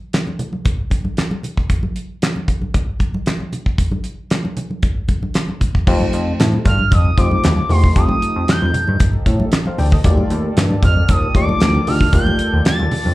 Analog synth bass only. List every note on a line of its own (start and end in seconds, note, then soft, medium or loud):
5.87 6.06 F2 loud
6.14 6.32 F2 loud
6.40 6.58 A2 loud
6.66 6.84 G2 loud
6.92 7.11 F2 loud
7.18 7.37 F2 medium
7.44 7.63 D#2 loud
7.70 7.89 E2 loud
7.96 8.15 F2 loud
8.36 8.45 F2 medium
8.62 8.71 F2 medium
8.88 8.97 G2 medium
9.26 9.45 A2 medium
9.79 9.97 D2 medium
10.04 10.23 D#2 loud
10.31 10.50 D#2 loud
10.57 10.76 G2 loud
10.83 11.02 F2 loud
11.09 11.28 D#2 loud
11.35 11.54 D#2 medium
11.61 11.80 D2 loud
11.87 12.06 D2 medium
12.13 12.32 D#2 loud
12.53 12.62 D#2 loud
12.79 12.88 D#2 loud
13.06 13.14 F2 medium